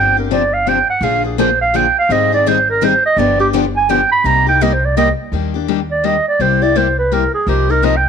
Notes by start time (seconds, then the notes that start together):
Already playing: G1 C3 F3 C4 D4 G4 G5
0.17 C4 D4 G4 A#4
0.31 C3 F3 C4 D4 G4 D5
0.54 F5
0.66 C3 F3 C4 D4 G4 G5
0.90 F#5
1.01 A#1 D3 F3 A#3 D4 G#4 F5
1.24 A#3 D4 G#4
1.38 D3 F3 A#3 D4 G#4 C5
1.61 F5
1.74 D3 F3 A#3 D4 G#4 G5
1.99 F5
2.09 G#1 D#3 G3 C4 D#4 G#4 D#5
2.32 C4 D#4 G#4 D5
2.46 D#3 G3 C4 D#4 G#4 C5
2.70 A#4
2.82 D#3 G3 C4 D#4 G#4 C5
3.05 D#5
3.16 G1 D3 F3 B3 D4 G4 D5
3.39 B3 D4 G4
3.53 D3 F3 B3 D4 G4
3.76 G#5
3.89 D3 F3 B3 D4 G4 G5
4.12 B5
4.24 C2 C3 G3 A#3 D#4 G4 A#5
4.47 A#3 D#4 G4 G5
4.61 C3 G3 A#3 D#4 G4 D#5
4.73 C5
4.85 D5
4.97 C3 G3 A#3 D#4 G4 D#5
5.32 D#2 D#3 G3 A#3 D4 G4
5.54 A#3 D4 G4
5.68 D#3 G3 A#3 D4 G4
5.91 D5
6.04 D#3 G3 A#3 D4 G4 D#5
6.28 D5
6.39 C2 C3 G3 A#3 E4 G4 C5
6.62 A#3 E4 G4 D5
6.75 C3 G3 A#3 E4 G4 C5
6.99 B4
7.12 C3 G3 A#3 E4 G4 A#4
7.34 G#4
7.47 C2 C3 F3 A#3 D#4 G4 A#4
7.69 A#3 D#4 A#4
7.82 C3 F3 A#3 D#4 A#4 D#5
7.97 G5